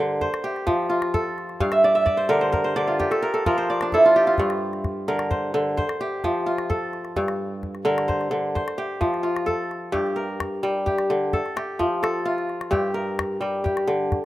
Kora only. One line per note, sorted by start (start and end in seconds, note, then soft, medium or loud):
0.00 0.26 G2 medium
0.00 0.26 D3 medium
0.00 0.79 A#4 medium
0.00 0.21 C5 medium
0.21 1.40 C5 medium
0.44 1.85 G4 medium
0.67 1.65 F3 medium
0.90 1.78 F4 medium
1.14 2.35 A4 medium
1.60 3.04 G2 medium
1.60 2.01 F5 medium
1.72 1.95 E5 medium
1.84 2.05 D5 medium
1.95 2.93 E5 medium
2.06 2.76 D5 medium
2.17 2.41 C5 medium
2.29 2.75 D3 medium
2.29 2.52 A#4 medium
2.41 2.64 C5 medium
2.52 3.17 A#4 medium
2.64 3.57 C5 medium
2.76 3.04 D3 medium
2.76 3.69 D5 medium
2.87 4.00 F4 medium
2.99 4.16 G4 medium
3.11 3.33 A4 medium
3.22 3.46 A#4 medium
3.34 3.93 A4 medium
3.46 4.43 F3 medium
3.46 4.00 A#4 medium
3.58 4.76 C5 medium
3.70 4.81 D5 medium
3.82 5.50 D4 medium
3.94 4.33 E4 medium
3.94 5.14 A4 medium
4.06 4.27 F4 medium
4.16 5.57 G4 medium
4.27 5.78 F4 medium
4.39 5.82 G2 medium
5.08 5.53 D3 medium
5.08 6.35 A#4 medium
5.31 5.77 C5 medium
5.54 5.82 D3 medium
5.77 6.96 C5 medium
6.01 7.42 G4 medium
6.24 7.21 F3 medium
6.46 7.98 F4 medium
6.70 7.91 A4 medium
7.17 8.60 G2 medium
7.85 8.30 D3 medium
7.85 9.13 A#4 medium
8.08 8.55 C5 medium
8.31 8.60 D3 medium
8.55 9.74 C5 medium
8.78 9.92 G4 medium
9.01 9.99 F3 medium
9.23 10.74 F4 medium
9.46 10.22 A4 medium
9.92 11.38 G2 medium
9.92 10.86 G4 medium
10.16 11.39 A#4 medium
10.63 11.15 G3 medium
10.86 11.56 G4 medium
11.10 11.38 D3 medium
11.33 12.02 A4 medium
11.56 12.71 G4 medium
11.79 12.77 F3 medium
12.03 13.00 A4 medium
12.25 13.77 F4 medium
12.71 14.16 G2 medium
12.71 13.64 G4 medium
12.94 14.22 A#4 medium
13.41 13.93 G3 medium
13.64 14.25 G4 medium
13.87 14.16 D3 medium